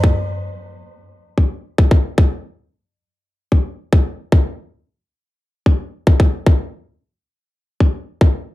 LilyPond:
\new DrumStaff \with { instrumentName = "Drums" } \drummode { \time 4/4 \tempo 4 = 112 bd4 r4 r8 bd8 r16 bd16 bd8 | bd4 r4 r8 bd8 r16 bd8. | bd4 r4 r8 bd8 r16 bd16 bd8 | bd4 r4 r8 bd8 r16 bd8. | }